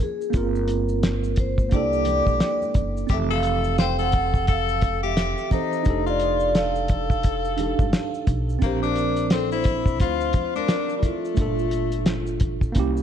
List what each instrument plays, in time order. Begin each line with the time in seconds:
Already playing: tine electric piano A#3 C#4 F4 G#4
0.00 vibraphone G#4, low conga, maracas
0.21 maracas
0.30 upright bass G1, tine electric piano A#3 C4, kick, closed hi-hat, maracas
0.35 tine electric piano F4 A#4, vibraphone A#4
0.55 maracas
0.68 closed hi-hat, maracas
0.89 maracas
1.03 snare, closed hi-hat, maracas
1.24 maracas
1.36 vibraphone C5, kick, closed hi-hat, low conga, maracas
1.58 kick, high conga, maracas
1.69 upright bass C2, tine electric piano A#3 D4, tenor saxophone G4, kick, closed hi-hat, high conga, maracas
1.74 tine electric piano E4 A4, vibraphone D5
1.93 maracas
2.05 closed hi-hat, high conga, low conga, maracas
2.27 upright bass A#1, kick, high conga, maracas
2.40 snare, closed hi-hat, maracas
2.62 high conga, maracas
2.74 upright bass F#1, kick, closed hi-hat, low conga, maracas
2.97 maracas
3.07 upright bass F1, tine electric piano E3 C4, tenor saxophone G4, kick, closed hi-hat, maracas
3.12 tine electric piano G4 A4, vibraphone E5
3.30 tenor saxophone A4, vibraphone F5, maracas
3.43 closed hi-hat, maracas
3.64 maracas
3.78 tenor saxophone C5, vibraphone G5, snare, closed hi-hat, maracas
3.99 tenor saxophone A4, vibraphone F#5, maracas
4.12 kick, closed hi-hat, low conga, maracas
4.34 kick, maracas
4.47 tenor saxophone A4, vibraphone F5, kick, closed hi-hat, maracas
4.69 maracas
4.81 kick, closed hi-hat, high conga, low conga, maracas
5.03 tenor saxophone G4, vibraphone E5, high conga, maracas
5.17 snare, closed hi-hat, maracas
5.38 maracas
5.50 tine electric piano E3 C4 G4 A4, tenor saxophone D#4, vibraphone C5, kick, closed hi-hat, low conga, maracas
5.73 maracas
5.83 upright bass F1, tine electric piano D4 D#4, kick, closed hi-hat, maracas
5.88 tine electric piano G4 A4
6.06 tenor saxophone F4, vibraphone D5, maracas
6.20 closed hi-hat, maracas
6.40 maracas
6.55 tenor saxophone A4, vibraphone F5, snare, closed hi-hat, maracas
6.76 maracas
6.88 kick, closed hi-hat, low conga, maracas
7.10 kick, maracas
7.23 kick, closed hi-hat, maracas
7.45 maracas
7.57 tine electric piano D4 D#4 G4 A4, closed hi-hat, high conga, low conga, maracas
7.79 upright bass G1, kick, high conga, maracas
7.93 snare, closed hi-hat, maracas
8.14 maracas
8.27 upright bass B1, kick, closed hi-hat, low conga, maracas
8.49 maracas
8.59 upright bass A#1, tenor saxophone A#3, tine electric piano C4 D4, kick, closed hi-hat, maracas
8.63 tine electric piano F3 C5, vibraphone G4
8.83 tenor saxophone D4, vibraphone A#4, maracas
8.96 closed hi-hat, maracas
9.16 closed hi-hat, maracas
9.30 tenor saxophone C4, vibraphone A4, snare, closed hi-hat, maracas
9.52 tenor saxophone E4, vibraphone C5, maracas
9.64 kick, closed hi-hat, low conga, maracas
9.86 kick, maracas
10.00 upright bass D2, tenor saxophone F4, vibraphone C5, kick, closed hi-hat, maracas
10.21 maracas
10.33 kick, closed hi-hat, high conga, low conga, maracas
10.56 tenor saxophone D4, vibraphone A#4, high conga, maracas
10.68 snare, closed hi-hat, maracas
10.90 maracas
10.98 tenor saxophone G3, vibraphone E4
11.03 tenor saxophone A3, vibraphone F4, kick, closed hi-hat, low conga, maracas
11.25 maracas
11.34 upright bass G1, tine electric piano A3 D4, kick, closed hi-hat, maracas
11.39 tine electric piano A#2 F4 A4
11.59 maracas
11.71 closed hi-hat, maracas
11.92 closed hi-hat, maracas
12.06 snare, closed hi-hat, maracas
12.27 maracas
12.40 kick, closed hi-hat, low conga, maracas
12.61 kick, maracas
12.72 upright bass C2, tine electric piano A#3 C#4, kick, closed hi-hat, maracas
12.77 tine electric piano E4 G4
12.97 maracas